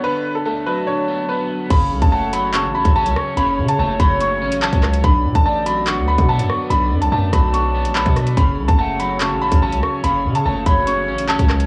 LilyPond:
<<
  \new Staff \with { instrumentName = "Upright piano" } { \time 4/4 \key fis \minor \tempo 4 = 144 b'8. a'16 a'8 b'8 cis''4 b'4 | b''8. a''16 a''8 b''8 cis'''8 b''8 a''8 cis'''8 | b''8. a''16 a''8 b''8 cis'''4 a''4 | b''8. a''16 a''8 b''8 cis'''8 b''8 a''8 cis'''8 |
b''8. a''16 a''8 b''8 cis'''4 b''4 | b''8. a''16 a''8 b''8 cis'''8 b''8 a''8 cis'''8 | b''8. a''16 a''8 b''8 cis'''4 a''4 | }
  \new Staff \with { instrumentName = "Flute" } { \time 4/4 \key fis \minor r4. a''2~ a''8 | r4 fis''4 a''2 | r4. cis''2~ cis''8 | r4 d''4 fis''2 |
r4. a''2~ a''8 | r4 fis''4 a''2 | r4. cis''2~ cis''8 | }
  \new Staff \with { instrumentName = "Woodwind section" } { \time 4/4 \key fis \minor << { <d' b'>1 | <cis' cis''>1~ | <cis' cis''>1 | <b d''>1~ |
<b d''>1 | <cis' cis''>1~ | <cis' cis''>1 | } \\ { <fis a'>1 | <fis a'>1~ | <fis a'>1~ | <fis a'>1~ |
<fis a'>1~ | <fis a'>1~ | <fis a'>1 | } >> }
  \new Staff \with { instrumentName = "Clean electric guitar" } { \time 4/4 \key fis \minor <d b>4 a8 fis8 d8 b8 b4 | cis4 a8 fis8 cis8 cis'8 cis'4 | cis4 a8 fis8 cis8 cis'8 cis'4 | d4 a8 fis8 d8 b8 b4 |
d4 a8 fis8 d8 b8 b4 | cis4 a8 fis8 cis8 cis'8 cis'4 | cis4 a8 fis8 cis8 cis'8 cis'4 | }
  \new Staff \with { instrumentName = "808-style bass" } { \clef bass \time 4/4 \key fis \minor r1 | fis,,8 cis,16 fis,,4. a,,8 a,,8 cis,16 r8 | fis,,8 cis8 fis,,8 fis,,4 a,,8. cis,8. | b,,8 b,16 a,,4. d,8 b,8 fis,16 r8 |
b,,8 fis,16 b,,16 fis,8 b,,4~ b,,16 a,,16 b,,16 b,8. | fis,,8 cis,16 fis,,4. a,,8 a,,8 cis,16 r8 | fis,,8 cis8 fis,,8 fis,,4 a,,8. cis,8. | }
  \new DrumStaff \with { instrumentName = "Drums" } \drummode { \time 4/4 r4 r4 r4 r4 | <cymc hh bd>8. <hh bd>16 r8 hh8 <hc hh>8. <hh bd>16 r16 hh16 ss8 | hh8. hh16 r8 <hh bd>8 hh8. hh16 hc16 <hh bd>16 <hc ss>16 hh16 | <hh bd>8. <hh bd>16 r8 hh8 <hc hh>8. <hh bd>16 r16 hh16 ss8 |
hh8. hh16 r8 <hh bd ss>8 hh8. hh16 hc16 <hh bd>16 <hh ss>16 hh16 | <hh bd>8. <hh bd>16 r8 hh8 <hc hh>8. <hh bd>16 r16 hh16 ss8 | hh8. hh16 r8 <hh bd>8 hh8. hh16 hc16 <hh bd>16 <hc ss>16 hh16 | }
>>